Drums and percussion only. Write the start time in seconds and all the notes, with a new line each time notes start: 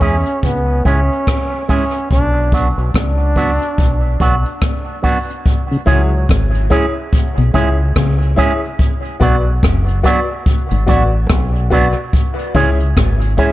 0.01 kick, open hi-hat
0.26 closed hi-hat
0.43 kick, closed hi-hat
0.85 kick, closed hi-hat
1.12 closed hi-hat
1.27 kick, cross-stick, closed hi-hat
1.69 kick, open hi-hat
1.96 closed hi-hat
2.11 kick, closed hi-hat
2.52 kick, closed hi-hat
2.78 closed hi-hat
2.94 kick, cross-stick, closed hi-hat
3.36 kick, open hi-hat
3.62 closed hi-hat
3.78 kick, closed hi-hat
4.20 kick, closed hi-hat
4.46 closed hi-hat
4.61 kick, cross-stick, closed hi-hat
5.03 kick, open hi-hat
5.30 closed hi-hat
5.46 kick, closed hi-hat
5.72 closed hi-hat
5.87 kick, closed hi-hat
6.29 kick, cross-stick, closed hi-hat
6.55 closed hi-hat
6.71 kick, closed hi-hat
7.13 kick, closed hi-hat
7.38 closed hi-hat
7.54 kick, closed hi-hat
7.96 kick, cross-stick, closed hi-hat
8.22 closed hi-hat
8.37 kick, closed hi-hat
8.64 closed hi-hat
8.79 kick, closed hi-hat
9.05 closed hi-hat
9.21 kick, closed hi-hat
9.63 kick, cross-stick, closed hi-hat
9.88 closed hi-hat
10.04 kick, cross-stick, closed hi-hat
10.46 kick, closed hi-hat
10.71 closed hi-hat
10.88 kick, closed hi-hat
11.29 kick, cross-stick, closed hi-hat
11.55 closed hi-hat
11.71 kick, closed hi-hat
12.13 kick, closed hi-hat
12.39 closed hi-hat
12.55 kick, open hi-hat
12.80 closed hi-hat
12.97 kick, cross-stick, closed hi-hat
13.21 closed hi-hat
13.38 kick, closed hi-hat